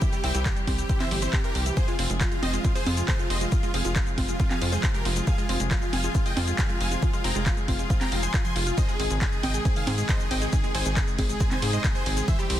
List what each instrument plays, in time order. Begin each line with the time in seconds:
Already playing: string section C3 E3 G3 E4 G4
0.02 synth arpeggio sound E3, supersaw synth G4, digital synth lead G4, kick, closed hi-hat, shaker
0.13 synth arpeggio sound G3, supersaw synth G4, digital synth lead G4, closed hi-hat, shaker
0.24 analog synth bass C2, synth arpeggio sound C4, supersaw synth E5 G5, digital synth lead G5, open hi-hat
0.35 analog synth bass C2, synth arpeggio sound G3, supersaw synth G4, digital synth lead G4, closed hi-hat, shaker
0.46 synth arpeggio sound E3, supersaw synth G4, digital synth lead G4, kick, clap, closed hi-hat, shaker
0.57 synth arpeggio sound G3, closed hi-hat, shaker
0.67 analog synth bass C2, synth arpeggio sound C4, supersaw synth G4, digital synth lead G4, kick, open hi-hat, high conga
0.78 synth arpeggio sound G3, supersaw synth G4, digital synth lead G4, closed hi-hat, shaker
0.89 synth arpeggio sound C4, supersaw synth G4, digital synth lead G4, kick, closed hi-hat, shaker
1.00 synth arpeggio sound E3, supersaw synth C5 E5, digital synth lead E5, clap, open hi-hat, high conga, shaker
1.11 analog synth bass G1, synth arpeggio sound G3, supersaw synth G4, digital synth lead G4, open hi-hat
1.22 synth arpeggio sound C4, supersaw synth E4 C5, digital synth lead C5, closed hi-hat, shaker
1.33 synth arpeggio sound C4, digital synth lead G4, supersaw synth G4, kick, clap, closed hi-hat, shaker
1.44 synth arpeggio sound E3, supersaw synth G4 A#4, digital synth lead A#4, closed hi-hat, shaker
1.55 analog synth bass C2, synth arpeggio sound C4, supersaw synth G4, digital synth lead G4, open hi-hat
1.66 synth arpeggio sound E3, supersaw synth G4, digital synth lead G4, closed hi-hat, shaker
1.77 string section F3 G#3 F4 G#4, synth arpeggio sound F3, supersaw synth G#4 C5, digital synth lead C5, kick, closed hi-hat, shaker
1.88 synth arpeggio sound G#3, digital synth lead F4, supersaw synth F4, closed hi-hat, shaker
1.99 analog synth bass F1, synth arpeggio sound C4, supersaw synth F4, digital synth lead F4, open hi-hat
2.10 analog synth bass F1, synth arpeggio sound G#3, closed hi-hat, shaker
2.21 synth arpeggio sound F3, supersaw synth F4, digital synth lead F4, kick, clap, closed hi-hat, shaker
2.32 synth arpeggio sound G#3, supersaw synth F4, digital synth lead F4, closed hi-hat, shaker
2.43 analog synth bass F1, synth arpeggio sound C4, supersaw synth C5 D#5, digital synth lead D#5, open hi-hat, high conga
2.53 synth arpeggio sound G#3, supersaw synth F4, digital synth lead F4, closed hi-hat, shaker
2.64 synth arpeggio sound C4, supersaw synth F4, digital synth lead F4, kick, closed hi-hat, shaker
2.75 synth arpeggio sound F3, supersaw synth G#4 C5, digital synth lead C5, open hi-hat, shaker
2.86 analog synth bass F2, synth arpeggio sound C4, supersaw synth F4, digital synth lead F4, open hi-hat, high conga
2.97 synth arpeggio sound G#3, supersaw synth F4, digital synth lead F4, closed hi-hat, shaker
3.08 synth arpeggio sound F3, supersaw synth G#4 C5, digital synth lead C5, kick, clap, closed hi-hat, shaker
3.19 synth arpeggio sound G#3, supersaw synth F4, digital synth lead F4, closed hi-hat, shaker
3.30 analog synth bass F1, synth arpeggio sound C4, supersaw synth C5 D#5, digital synth lead D#5, open hi-hat
3.41 synth arpeggio sound G#3, supersaw synth F4, digital synth lead F4, closed hi-hat, shaker
3.52 synth arpeggio sound F3, supersaw synth F4, digital synth lead F4, kick, closed hi-hat, shaker
3.63 synth arpeggio sound G#3, supersaw synth F4, digital synth lead F4, closed hi-hat, shaker
3.74 analog synth bass F1, synth arpeggio sound C4, supersaw synth G#4 F5, digital synth lead F5, open hi-hat
3.85 analog synth bass F1, synth arpeggio sound G#3, supersaw synth F4, digital synth lead F4, closed hi-hat, shaker
3.96 synth arpeggio sound F3, supersaw synth F4, kick, clap, closed hi-hat, shaker
4.07 synth arpeggio sound G#3, closed hi-hat, shaker
4.18 analog synth bass F1, synth arpeggio sound C4, digital synth lead F4, supersaw synth F4, kick, open hi-hat, high conga
4.29 synth arpeggio sound G#3, digital synth lead F4, supersaw synth F4, closed hi-hat, shaker
4.40 synth arpeggio sound C4, digital synth lead F4, supersaw synth F4, kick, closed hi-hat, shaker
4.50 synth arpeggio sound F3, supersaw synth G#4 F5, digital synth lead F5, clap, closed hi-hat, high conga, shaker
4.61 analog synth bass F2, synth arpeggio sound C4, digital synth lead F4, supersaw synth F4, open hi-hat
4.72 synth arpeggio sound G#3, supersaw synth G#4 C5, digital synth lead C5, closed hi-hat, shaker
4.83 synth arpeggio sound F3, digital synth lead F4, supersaw synth F4, kick, clap, closed hi-hat, shaker
4.94 synth arpeggio sound G#3, supersaw synth G4 A#4, digital synth lead A#4, closed hi-hat, shaker
5.05 analog synth bass F1, synth arpeggio sound C4, digital synth lead F4, supersaw synth F4, open hi-hat
5.16 synth arpeggio sound G#3, digital synth lead F4, supersaw synth F4, closed hi-hat, shaker
5.27 synth arpeggio sound F3, supersaw synth G#4 F5, digital synth lead F5, kick, closed hi-hat, shaker
5.38 synth arpeggio sound G#3, digital synth lead F4, supersaw synth F4, closed hi-hat, shaker
5.49 analog synth bass F1, synth arpeggio sound C4, digital synth lead F4, supersaw synth F4, open hi-hat
5.60 analog synth bass F1, synth arpeggio sound G#3, closed hi-hat, shaker
5.71 synth arpeggio sound F3, digital synth lead F4, supersaw synth F4, kick, clap, closed hi-hat, shaker
5.82 synth arpeggio sound G#3, digital synth lead F4, supersaw synth F4, closed hi-hat, shaker
5.93 analog synth bass F1, synth arpeggio sound C4, supersaw synth F5 G#5, digital synth lead G#5, open hi-hat, high conga
6.04 synth arpeggio sound G#3, digital synth lead F4, supersaw synth F4, closed hi-hat, shaker
6.15 synth arpeggio sound C4, digital synth lead F4, supersaw synth F4, kick, closed hi-hat, shaker
6.26 synth arpeggio sound F3, supersaw synth D#5 G5, digital synth lead G5, open hi-hat, shaker
6.37 analog synth bass F2, synth arpeggio sound C4, digital synth lead F4, supersaw synth F4, open hi-hat, high conga
6.48 synth arpeggio sound G#3, supersaw synth F4, digital synth lead F4, closed hi-hat, shaker
6.59 synth arpeggio sound F3, supersaw synth G#4 F5, digital synth lead F5, kick, clap, closed hi-hat, shaker
6.69 synth arpeggio sound G#3, digital synth lead F4, supersaw synth F4, closed hi-hat, shaker
6.80 analog synth bass F1, synth arpeggio sound C4, supersaw synth F5 G#5, digital synth lead G#5, open hi-hat
6.91 synth arpeggio sound G#3, digital synth lead F4, supersaw synth F4, closed hi-hat, shaker
7.02 synth arpeggio sound F3, digital synth lead F4, supersaw synth F4, kick, closed hi-hat, shaker
7.13 synth arpeggio sound G#3, digital synth lead F4, supersaw synth F4, closed hi-hat, shaker
7.24 analog synth bass F1, synth arpeggio sound C4, supersaw synth G5 A#5, digital synth lead A#5, open hi-hat
7.35 analog synth bass F1, synth arpeggio sound G#3, digital synth lead F4, supersaw synth F4, closed hi-hat, shaker
7.46 synth arpeggio sound F3, digital synth lead F4, supersaw synth F4, kick, clap, closed hi-hat, shaker
7.57 synth arpeggio sound G#3, closed hi-hat, shaker
7.68 analog synth bass F1, synth arpeggio sound C4, supersaw synth F4, digital synth lead F4, kick, open hi-hat, high conga
7.79 synth arpeggio sound G#3, digital synth lead F4, supersaw synth F4, closed hi-hat, shaker
7.90 synth arpeggio sound C4, supersaw synth F4, digital synth lead F4, kick, closed hi-hat, shaker
8.01 synth arpeggio sound F3, supersaw synth G5 A#5, digital synth lead A#5, clap, open hi-hat, high conga, shaker
8.12 analog synth bass F1, synth arpeggio sound F3, supersaw synth F4, digital synth lead F4, open hi-hat
8.23 synth arpeggio sound C5, supersaw synth G#5 C6, digital synth lead C6, closed hi-hat, shaker
8.34 supersaw synth F4, synth arpeggio sound F4, digital synth lead F4, kick, clap, closed hi-hat, shaker
8.45 synth arpeggio sound F3, supersaw synth G#5 C6, digital synth lead C6, closed hi-hat, shaker
8.56 analog synth bass F1, supersaw synth F4, digital synth lead F4, synth arpeggio sound G#4, open hi-hat
8.67 supersaw synth F4, synth arpeggio sound F4, digital synth lead F4, closed hi-hat, shaker
8.78 string section C3 D#3 D#4, synth arpeggio sound D#3, supersaw synth C5 D#5, digital synth lead D#5, kick, closed hi-hat, ride, shaker
8.89 synth arpeggio sound G#3, supersaw synth G#4, digital synth lead G#4, closed hi-hat, shaker
9.00 analog synth bass G#1, synth arpeggio sound C4, digital synth lead G#4, supersaw synth G#4, open hi-hat, ride
9.11 analog synth bass G#1, synth arpeggio sound G#3, closed hi-hat, shaker
9.21 synth arpeggio sound D#3, digital synth lead G#4, supersaw synth G#4, kick, clap, closed hi-hat, ride, shaker
9.32 synth arpeggio sound G#3, supersaw synth G#4, digital synth lead G#4, closed hi-hat, shaker
9.43 analog synth bass G#1, synth arpeggio sound C4, supersaw synth D#5 G5, digital synth lead G5, open hi-hat, ride, high conga
9.54 synth arpeggio sound G#3, supersaw synth G#4, digital synth lead G#4, closed hi-hat, shaker
9.65 synth arpeggio sound C4, supersaw synth G#4, digital synth lead G#4, kick, closed hi-hat, ride, shaker
9.76 synth arpeggio sound D#3, supersaw synth G#4 F5, digital synth lead F5, open hi-hat, shaker
9.87 analog synth bass G#2, synth arpeggio sound C4, supersaw synth G#4, digital synth lead G#4, open hi-hat, ride, high conga
9.98 synth arpeggio sound G#3, supersaw synth G#4, digital synth lead G#4, closed hi-hat, shaker
10.09 synth arpeggio sound D#3, supersaw synth C5 D#5, digital synth lead D#5, kick, clap, closed hi-hat, ride, shaker
10.20 synth arpeggio sound G#3, supersaw synth G#4, digital synth lead G#4, closed hi-hat, shaker
10.31 analog synth bass G#1, synth arpeggio sound C4, supersaw synth D#5 G5, digital synth lead G5, open hi-hat, ride
10.42 synth arpeggio sound G#3, supersaw synth G#4, digital synth lead G#4, closed hi-hat, shaker
10.53 synth arpeggio sound D#3, supersaw synth G#4, digital synth lead G#4, kick, closed hi-hat, ride, shaker
10.64 synth arpeggio sound G#3, supersaw synth G#4, digital synth lead G#4, closed hi-hat, shaker
10.75 analog synth bass G#1, synth arpeggio sound C4, supersaw synth C5 G#5, digital synth lead G#5, open hi-hat, ride
10.86 analog synth bass G#1, synth arpeggio sound G#3, supersaw synth G#4, digital synth lead G#4, closed hi-hat, shaker
10.97 synth arpeggio sound D#3, supersaw synth G#4, digital synth lead G#4, kick, clap, closed hi-hat, ride, shaker
11.08 synth arpeggio sound G#3, closed hi-hat, shaker
11.18 analog synth bass G#1, synth arpeggio sound C4, supersaw synth G#4, digital synth lead G#4, kick, open hi-hat, ride, high conga
11.29 synth arpeggio sound G#3, supersaw synth G#4, digital synth lead G#4, closed hi-hat, shaker
11.40 synth arpeggio sound C4, supersaw synth G#4, digital synth lead G#4, kick, closed hi-hat, ride, shaker
11.51 synth arpeggio sound D#3, supersaw synth C5 G#5, digital synth lead G#5, clap, closed hi-hat, high conga, shaker
11.62 analog synth bass G#2, synth arpeggio sound C4, supersaw synth G#4, digital synth lead G#4, open hi-hat, ride
11.73 synth arpeggio sound G#3, supersaw synth C5 D#5, digital synth lead D#5, closed hi-hat, shaker
11.84 synth arpeggio sound D#3, supersaw synth G#4, digital synth lead G#4, kick, clap, closed hi-hat, ride, shaker
11.95 synth arpeggio sound G#3, supersaw synth G#4 C5, digital synth lead C5, closed hi-hat, shaker
12.06 analog synth bass G#1, synth arpeggio sound C4, supersaw synth G#4, digital synth lead G#4, open hi-hat, ride
12.17 synth arpeggio sound G#3, supersaw synth G#4, digital synth lead G#4, closed hi-hat, shaker
12.28 string section E3 G3 E4 G4, synth arpeggio sound E3, supersaw synth C5 E5, digital synth lead E5, kick, closed hi-hat, ride, shaker
12.39 synth arpeggio sound G3, supersaw synth G4, digital synth lead G4, closed hi-hat, shaker
12.50 analog synth bass C2, synth arpeggio sound C4, supersaw synth G4, digital synth lead G4, open hi-hat, ride